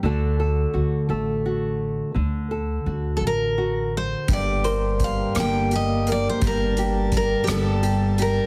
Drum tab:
HH |------|------|xxxxxx|xxxxxx|
SD |------|------|---r--|---r--|
BD |------|------|o-o---|o-o---|